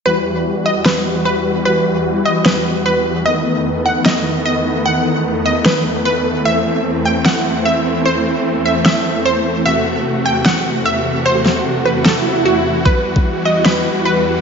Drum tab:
SD |--------o-------|--------o-------|--------o-------|--------o-------|
BD |----------------|----------------|----------------|----------------|

SD |--------o-------|--------o-------|--------o-------|--o-----o-------|
BD |----------------|----------------|----------------|----------------|

SD |--------o-------|
BD |o--o------------|